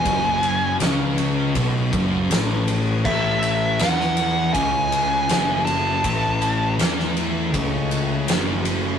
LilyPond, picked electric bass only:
\new Staff \with { instrumentName = "Picked electric bass" } { \clef bass \time 4/4 \key a \lydian \tempo 4 = 80 fis,,4 cis,4 b,,8 fis,,8 a,,4 | a,,4 e,4 cis,4 fis,,4 | a,,4 e,4 cis,4 fis,,4 | }